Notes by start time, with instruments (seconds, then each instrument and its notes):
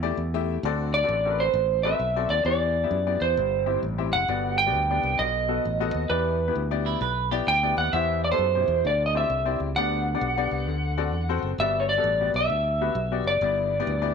Already playing: fingered electric bass E2
0.03 grand piano A3 E4 G4 D5
0.17 fingered electric bass E2
0.34 grand piano A3 E4 G4 E5
0.63 fingered electric bass D2, grand piano D3 C4 F#4 A4 D5
0.94 electric slide guitar D5
1.04 grand piano C4 F#4 A4 D5
1.09 fingered electric bass A1
1.25 grand piano C4 F#4 A4 A#4
1.31 grand piano B4
1.40 electric slide guitar C5
1.54 fingered electric bass A1
1.83 grand piano C4 F#4 A4 B4, electric slide guitar E5
1.99 fingered electric bass B1
2.16 grand piano C4 F#4 A4 D5
2.29 fingered electric bass D#2, electric slide guitar D5
2.45 fingered electric bass E2, grand piano E3 B3 E4 G4 D5, electric slide guitar D5
2.84 grand piano B3 E4 G4 E5
2.91 fingered electric bass F#2
3.06 grand piano B3 E4 G4 D5
3.21 fingered electric bass E2, electric slide guitar C5
3.37 fingered electric bass G1, grand piano G2
3.66 grand piano C4 E4 G4 E5
3.83 fingered electric bass A1
3.98 grand piano C4 E4 G4 E5
4.13 fingered electric bass F#1, electric slide guitar F#5
4.28 fingered electric bass G1, grand piano G2 B3 F#4 G4 D5
4.58 electric slide guitar G5
4.67 grand piano B3 F#4 G4 D5
4.74 fingered electric bass D2
4.90 grand piano B3 D4 G4 D5
5.03 fingered electric bass C2
5.19 fingered electric bass B1, grand piano B2, electric slide guitar D#5
5.48 grand piano B3 F#4 A4 D#5
5.65 fingered electric bass A1
5.80 grand piano B3 F#4 A4 D#5
5.94 fingered electric bass D#2
6.09 fingered electric bass E2, grand piano E3 B3 E4 G4 D5, electric slide guitar B4
6.48 grand piano B3 E4 G4 B4
6.55 fingered electric bass D2
6.71 grand piano B3 E4 G4 D5
6.86 clean electric guitar E4
7.01 fingered electric bass B1, clean electric guitar B4
7.31 grand piano B3 E4 G4 D5, clean electric guitar G4
7.47 fingered electric bass D2, electric slide guitar G5
7.63 grand piano B3 E4 G4 D5
7.77 fingered electric bass D#2, electric slide guitar F#5
7.93 fingered electric bass E2, grand piano E3 B3 E4 G4 C5, electric slide guitar E5
8.24 electric slide guitar D5
8.32 grand piano B3 E4 G4 A4, electric slide guitar C5
8.38 fingered electric bass F#2
8.55 grand piano B2 D#4 G4 C5
8.60 grand piano E4
8.68 fingered electric bass E2
8.85 fingered electric bass D2, grand piano D3, electric slide guitar D5
9.06 electric slide guitar D#5
9.15 grand piano C4 E4 G4 D5, electric slide guitar E5
9.30 fingered electric bass C2
9.45 grand piano C4 E4 G4 D5
9.60 fingered electric bass C#2
9.76 fingered electric bass D2, grand piano D3 B3 D4 G4 D5, electric slide guitar F#5
10.14 grand piano B3 D4 G4 D5
10.21 fingered electric bass B1
10.37 grand piano B3 D4 G4 D5
10.51 fingered electric bass C2
10.68 fingered electric bass D2, grand piano D3
10.98 grand piano C4 F#4 A4 D5
11.13 fingered electric bass E2
11.29 grand piano C4 F#4 A4 C5
11.43 fingered electric bass F#1
11.58 fingered electric bass G1, grand piano G2 B3 F#4 G4 D5, electric slide guitar E5
11.80 electric slide guitar C#5
11.89 electric slide guitar D5
11.98 grand piano B3 F#4 G4 A4
12.04 fingered electric bass A1
12.21 grand piano B3 F#4 G4 D5
12.34 fingered electric bass B1, electric slide guitar E5
12.50 fingered electric bass D2
12.81 grand piano B3 F#4 G4 B4
12.95 fingered electric bass B1
13.12 grand piano B3 F#4 G4 D5
13.24 fingered electric bass F#1, electric slide guitar D5
13.41 fingered electric bass G1, grand piano G2 B3 E4 G4 D5
13.80 grand piano B3 E4 G4 D5
13.87 fingered electric bass D2
14.01 grand piano B3 E4 G4 D5